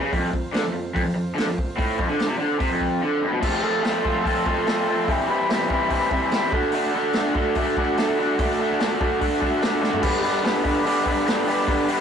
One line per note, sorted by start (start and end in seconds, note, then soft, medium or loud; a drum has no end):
0.00 0.11 C#3 loud
0.12 0.30 F2 loud
0.12 3.39 C4 medium
0.12 3.39 F4 medium
0.12 3.40 C5 medium
0.12 kick loud
0.12 open hi-hat medium
0.32 0.49 F2 medium
0.32 kick medium
0.53 0.63 D3 loud
0.53 snare loud
0.53 open hi-hat medium
0.62 0.71 F2 medium
0.73 0.90 F2 medium
0.94 1.04 F2 loud
0.94 kick loud
0.94 open hi-hat medium
1.05 1.13 F2 medium
1.15 1.32 F2 medium
1.35 1.46 D3 loud
1.35 snare loud
1.35 open hi-hat medium
1.46 1.57 F2 medium
1.58 kick medium
1.77 1.98 A2 loud
1.77 kick loud
1.77 open hi-hat medium
1.97 2.08 F2 loud
1.97 kick medium
2.08 2.28 D3 medium
2.19 snare medium
2.19 open hi-hat soft
2.29 2.38 C3 loud
2.38 2.59 D3 loud
2.59 2.70 C3 loud
2.59 kick loud
2.59 open hi-hat medium
2.70 3.01 F2 loud
2.81 kick medium
3.01 3.22 D3 loud
3.21 3.32 G2 medium
3.31 3.40 B2 loud
3.41 3.60 F3 medium
3.41 3.61 A3 loud
3.41 3.63 C4 loud
3.41 5.05 F4 medium
3.41 3.62 F4 loud
3.41 5.06 A4 medium
3.41 3.63 A4 loud
3.41 5.06 C5 medium
3.41 kick loud
3.41 crash loud
3.61 3.80 F3 medium
3.61 3.81 A3 medium
3.61 3.82 C4 medium
3.61 3.82 F4 medium
3.61 3.82 A4 loud
3.81 4.02 F3 medium
3.81 4.03 A3 medium
3.81 4.03 C4 medium
3.81 4.04 F4 medium
3.81 4.05 A4 medium
3.81 open hi-hat medium
3.85 snare loud
4.03 4.22 F3 loud
4.03 4.23 A3 loud
4.03 4.23 C4 loud
4.03 4.24 F4 loud
4.03 4.24 A4 loud
4.03 kick medium
4.23 4.44 F3 medium
4.23 4.45 A3 medium
4.23 4.45 C4 loud
4.23 4.45 F4 medium
4.23 4.46 A4 medium
4.23 kick medium
4.23 open hi-hat medium
4.45 4.65 F3 medium
4.45 4.65 A3 medium
4.45 4.66 C4 loud
4.45 4.67 F4 loud
4.45 4.67 A4 loud
4.45 kick medium
4.66 4.85 F3 medium
4.66 4.87 A3 loud
4.66 4.87 C4 loud
4.66 4.87 F4 loud
4.66 4.88 A4 medium
4.66 snare loud
4.66 open hi-hat medium
4.86 5.07 F3 medium
4.86 5.07 A3 medium
4.86 5.08 C4 medium
4.86 5.08 F4 medium
4.86 5.08 A4 medium
5.07 5.28 C3 medium
5.07 5.28 E3 medium
5.07 5.29 G3 loud
5.07 5.29 C4 loud
5.07 6.50 E4 medium
5.07 5.30 E4 loud
5.07 6.50 G4 medium
5.07 6.50 C5 medium
5.07 kick loud
5.07 open hi-hat medium
5.29 5.47 C3 medium
5.29 5.48 E3 medium
5.29 5.48 G3 medium
5.29 5.49 C4 medium
5.29 5.50 E4 loud
5.48 5.68 C3 medium
5.48 5.69 E3 medium
5.48 5.70 G3 medium
5.48 5.70 C4 loud
5.48 5.71 E4 loud
5.48 snare loud
5.48 open hi-hat medium
5.69 5.87 C3 medium
5.69 5.88 E3 medium
5.69 5.88 G3 medium
5.69 5.89 C4 loud
5.69 5.89 E4 loud
5.69 kick medium
5.88 6.09 C3 loud
5.88 6.11 E3 medium
5.88 6.11 G3 medium
5.88 6.12 C4 medium
5.88 6.12 E4 medium
5.88 kick medium
5.88 open hi-hat medium
6.10 6.31 C3 medium
6.10 6.32 E3 medium
6.10 6.32 G3 medium
6.10 6.33 C4 loud
6.10 6.33 E4 medium
6.10 kick medium
6.31 6.52 C3 medium
6.31 6.52 E3 medium
6.31 6.52 G3 medium
6.31 6.53 C4 medium
6.31 6.53 E4 loud
6.31 snare loud
6.31 open hi-hat medium
6.50 6.73 D3 medium
6.50 6.74 A3 medium
6.50 6.74 D4 loud
6.50 9.78 F#4 medium
6.50 6.75 F#4 loud
6.50 9.78 A4 medium
6.50 9.78 D5 medium
6.50 kick loud
6.72 6.94 D3 medium
6.72 6.95 A3 loud
6.72 6.95 D4 loud
6.72 open hi-hat medium
6.76 6.96 F#4 loud
6.94 7.14 D3 medium
6.94 7.15 A3 loud
6.94 7.16 D4 medium
6.94 7.16 F#4 medium
7.13 7.34 D3 medium
7.13 7.34 A3 medium
7.13 7.35 D4 medium
7.13 7.35 F#4 loud
7.13 snare loud
7.13 open hi-hat medium
7.34 7.54 D3 loud
7.34 7.55 A3 loud
7.34 7.57 D4 loud
7.34 7.57 F#4 loud
7.34 kick loud
7.55 7.76 D3 medium
7.55 7.77 A3 loud
7.55 7.78 D4 loud
7.55 7.78 F#4 medium
7.55 kick medium
7.55 open hi-hat medium
7.77 7.96 D3 medium
7.77 7.97 A3 medium
7.77 7.98 D4 loud
7.77 7.98 F#4 loud
7.77 kick medium
7.97 8.17 D3 medium
7.97 8.17 A3 loud
7.97 8.19 D4 medium
7.97 8.19 F#4 medium
7.97 snare loud
7.97 open hi-hat medium
8.18 8.37 D3 medium
8.18 8.38 A3 medium
8.18 8.39 D4 medium
8.18 8.39 F#4 medium
8.38 8.58 D3 medium
8.38 8.59 A3 loud
8.38 8.60 D4 loud
8.38 8.61 F#4 loud
8.38 kick loud
8.38 open hi-hat medium
8.59 8.78 D3 medium
8.59 8.78 A3 medium
8.59 8.79 D4 medium
8.59 8.79 F#4 loud
8.79 8.99 D3 medium
8.79 9.00 A3 medium
8.79 9.00 D4 medium
8.79 9.01 F#4 loud
8.79 snare loud
8.79 open hi-hat medium
9.00 9.19 D3 medium
9.00 9.19 A3 loud
9.00 9.20 D4 loud
9.00 9.21 F#4 loud
9.00 kick loud
9.20 9.39 D3 medium
9.20 9.40 A3 medium
9.20 9.41 D4 medium
9.20 9.41 F#4 medium
9.20 kick loud
9.20 open hi-hat medium
9.40 9.60 D3 loud
9.40 9.61 A3 loud
9.40 9.61 D4 loud
9.40 9.62 F#4 medium
9.40 kick medium
9.62 9.79 D3 medium
9.62 9.81 A3 loud
9.62 9.80 D4 loud
9.62 9.81 F#4 loud
9.62 snare loud
9.62 open hi-hat medium
9.81 10.00 D3 medium
9.81 10.02 A3 medium
9.81 10.02 D4 medium
9.81 10.03 F#4 medium
9.81 snare medium
9.93 floor tom loud
10.01 10.22 G2 medium
10.01 10.22 D3 loud
10.01 10.23 G3 loud
10.01 10.24 B3 loud
10.01 10.24 D4 loud
10.01 12.01 G4 medium
10.01 12.01 B4 medium
10.01 12.01 D5 medium
10.01 kick loud
10.01 crash loud
10.22 10.42 G2 medium
10.22 10.43 D3 loud
10.22 10.44 G3 medium
10.22 10.45 B3 loud
10.22 10.45 D4 loud
10.22 open hi-hat medium
10.43 10.62 G2 loud
10.43 10.62 D3 loud
10.43 10.63 G3 loud
10.43 10.64 B3 loud
10.43 10.65 D4 loud
10.43 snare loud
10.43 open hi-hat medium
10.63 10.83 G2 medium
10.63 10.84 D3 medium
10.63 10.85 G3 medium
10.63 10.85 B3 loud
10.63 10.86 D4 loud
10.63 kick medium
10.63 open hi-hat medium
10.84 11.04 G2 medium
10.84 11.05 D3 loud
10.84 11.06 G3 medium
10.84 11.07 B3 medium
10.84 11.08 D4 loud
10.84 open hi-hat medium
11.05 11.24 G2 loud
11.05 11.25 D3 medium
11.05 11.26 G3 medium
11.05 11.27 B3 loud
11.05 11.28 D4 loud
11.05 kick medium
11.05 open hi-hat medium
11.26 11.45 G2 loud
11.26 11.46 D3 medium
11.26 11.47 G3 loud
11.26 11.47 B3 loud
11.26 11.48 D4 loud
11.26 snare loud
11.26 open hi-hat medium
11.46 11.65 G2 medium
11.46 11.66 D3 medium
11.46 11.67 G3 medium
11.46 11.67 B3 medium
11.46 11.69 D4 medium
11.46 open hi-hat medium
11.67 11.87 G2 medium
11.67 11.88 D3 loud
11.67 11.89 G3 loud
11.67 11.89 B3 loud
11.67 11.90 D4 loud
11.67 kick loud
11.67 open hi-hat medium
11.88 12.01 G2 medium
11.88 12.01 D3 medium
11.88 12.01 G3 loud
11.88 12.01 B3 loud
11.88 12.01 D4 medium
11.88 open hi-hat medium